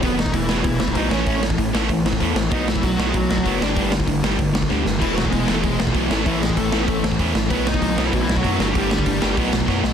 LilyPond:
<<
  \new Staff \with { instrumentName = "Lead electric guitar" } { \time 4/4 \key a \lydian \tempo 4 = 193 <b b'>8 <dis' dis''>8 <e e'>8. <fis fis'>16 <e e'>8 <e e'>8 <dis' dis''>8 <cis' cis''>8~ | <cis' cis''>8 r2. r8 | <dis' dis''>8 <e e'>8 <fis fis'>8. <gis gis'>16 <fis fis'>8 <fis fis'>4 <d' d''>8~ | <d' d''>8 r2. r8 |
<e e'>8 <fis fis'>8 <gis gis'>8. <a a'>16 <gis gis'>8 r4. | <e e'>8 <gis gis'>8 <a a'>8. <b b'>16 <a a'>8 r4. | <b b'>8 <dis' dis''>4~ <dis' dis''>16 <e e'>8 <e e'>8 <fis fis'>8 <fis fis'>8 <g g'>16 | <g g'>2 r2 | }
  \new Staff \with { instrumentName = "Distorted electric guitar" } { \clef bass \time 4/4 \key a \lydian r1 | r1 | r1 | r1 |
<e gis b e'>2 <e gis b e'>4. <a, e a cis' e'>8~ | <a, e a cis' e'>4. <a, e a cis' e'>2 r8 | <b, dis fis b dis'>2 <b, dis fis b dis'>4. <g, d g b d'>8~ | <g, d g b d'>4. <g, d g b d'>8 <b, fis b dis'>2 | }
  \new Staff \with { instrumentName = "Distorted electric guitar" } { \clef bass \time 4/4 \key a \lydian <e, b, e>8 <e, b,>8 <e, b,>8 <e, b, e>8 <e, b,>8 <e, b,>8 <e, b, e>8 <a, e a>8 | <a, e a>8 <a, e>8 <a, e>8 <a, e a>8 <a, e>8 <a, e>8 <a, e a>8 <a, e>8 | <b, fis b>8 <b, fis>8 <b, fis>8 <b, fis b>8 <b, fis>8 <b, fis>8 <b, fis b>8 <g, d g>8 | <g, d g>8 <g, d>8 <g, d>8 <g, d g>8 <g, d>8 <g, d>8 <g, d g>8 <g, d>8 |
<e, b, e>8 <e, b,>8 <e, b,>8 <e, b, e>8 <e, b,>8 <e, b,>8 <e, b, e>8 <a, e a>8 | <a, e a>8 <a, e>8 <a, e>8 <a, e a>8 <a, e>8 <a, e>8 <a, e a>8 <a, e>8 | <b, fis b>8 <b, fis>8 <b, fis>8 <b, fis b>8 <b, fis>8 <b, fis>8 <b, fis b>8 <g, d g>8 | <g, d g>8 <g, d>8 <g, d>8 <g, d g>8 <b, fis b>8 <b, fis>8 <b, fis b>8 <b, fis>8 | }
  \new Staff \with { instrumentName = "Overdriven electric guitar" } { \clef bass \time 4/4 \key a \lydian <e, b, e>8 <e, b,>8 <e, b,>8 <e, b, e>8 <e, b,>8 <e, b,>8 <e, b, e>8 <a, e a>8 | <a, e a>8 <a, e>8 <a, e>8 <a, e a>8 <a, e>8 <a, e>8 <a, e a>8 <a, e>8 | <b, fis b>8 <b, fis>8 <b, fis>8 <b, fis b>8 <b, fis>8 <b, fis>8 <b, fis b>8 <g, d g>8 | <g, d g>8 <g, d>8 <g, d>8 <g, d g>8 <g, d>8 <g, d>8 <g, d g>8 <g, d>8 |
<e, b, e>8 <e, b,>8 <e, b,>8 <e, b, e>8 <e, b,>8 <e, b,>8 <e, b, e>8 <a, e a>8 | <a, e a>8 <a, e>8 <a, e>8 <a, e a>8 <a, e>8 <a, e>8 <a, e a>8 <a, e>8 | <b, fis b>8 <b, fis>8 <b, fis>8 <b, fis b>8 <b, fis>8 <b, fis>8 <b, fis b>8 <g, d g>8 | <g, d g>8 <g, d>8 <g, d>8 <g, d g>8 <b, fis b>8 <b, fis>8 <b, fis b>8 <b, fis>8 | }
  \new Staff \with { instrumentName = "Analog synth bass" } { \clef bass \time 4/4 \key a \lydian e,,4 e,,8 e,,8 e,,8 e,,8 b,,8 a,,8 | a,,4 a,,8 a,,8 a,,8 a,,8 e,8 a,,8 | b,,4 b,,8 b,,8 b,,8 b,,8 fis,,8 g,,8 | g,,4 g,,8 g,,8 g,,8 g,,8 d,8 g,,8 |
e,,4 e,,8 e,,8 e,,8 e,,8 b,,8 a,,8 | a,,4 a,,8 a,,8 a,,8 a,,8 e,8 a,,8 | b,,4 b,,8 b,,8 b,,8 b,,8 fis,8 g,,8 | g,,4 g,,8 g,,8 b,,8 b,,8 fis,8 b,,8 | }
  \new DrumStaff \with { instrumentName = "Drums" } \drummode { \time 4/4 <hho bd>8 sn16 bd16 <hho bd>8 sn8 <hho bd>8 sn16 bd16 <hho bd>8 sn8 | <hho bd>8 sn16 bd16 <hho bd>8 sn8 <hho bd>8 sn16 bd16 <hho bd>8 sn8 | <hho bd>8 sn16 bd16 <hho bd>8 sn8 <hho bd>8 sn16 bd16 <hho bd>8 sn8 | <hho bd>8 sn16 bd16 <hho bd>8 sn8 <hho bd>8 sn16 bd16 <bd sn>8 sn8 |
<cymc bd>8 sn16 bd16 <hho bd>8 sn8 <hho bd>8 sn16 bd16 <hho bd>8 sn8 | <hho bd>8 sn16 bd16 <hho bd>8 sn8 <hho bd>8 sn16 bd16 <hho bd>8 sn8 | <hho bd>8 sn16 bd16 <hho bd>8 sn8 <hho bd>8 sn16 bd16 <hho bd>8 sn8 | <hho bd>8 sn16 bd16 <hho bd>8 sn8 <hho bd>8 sn16 bd16 <bd sn>8 sn8 | }
>>